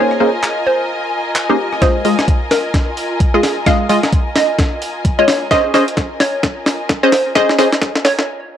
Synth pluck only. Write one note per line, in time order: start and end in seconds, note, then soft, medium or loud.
0.00 0.17 C#5 loud
0.67 0.82 C5 medium
1.49 1.68 G4 medium
1.82 2.02 C5 loud
2.51 2.66 A#4 medium
3.34 3.53 G#4 medium
3.66 3.87 F5 loud
4.36 4.51 D#5 medium
5.19 5.37 C#5 medium
5.51 5.71 D#5 loud
6.20 6.35 C#5 medium
7.03 7.22 C5 medium
7.35 7.56 D#5 loud
8.05 8.20 C#5 medium